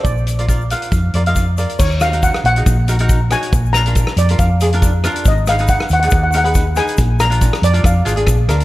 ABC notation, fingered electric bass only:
X:1
M:4/4
L:1/8
Q:"Swing 16ths" 1/4=139
K:Ebm
V:1 name="Fingered electric bass" clef=bass
B,,,4 F,, F,,3 | E,,3 B,,, B,,,4 | B,,,3 F,, F,,4 | A,,,3 E,, E,,4 |
B,,,3 F,, F,, A,,, B,,, =D,, |]